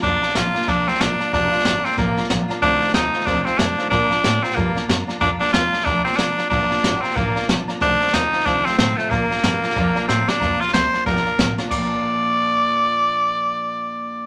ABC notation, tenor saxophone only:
X:1
M:4/4
L:1/16
Q:"Swing" 1/4=185
K:Bb
V:1 name="Tenor saxophone"
D4 F4 D2 C2 D4 | D6 C2 B,4 z4 | D4 E4 D3/2 D/2 C2 D4 | D6 C2 B,4 z4 |
D2 D2 F4 D2 C2 D4 | D6 C2 B,4 z4 | D4 E4 D2 C2 C2 A,2 | B,12 C2 D2- |
D2 F2 c4 B6 z2 | d16- | d16 |]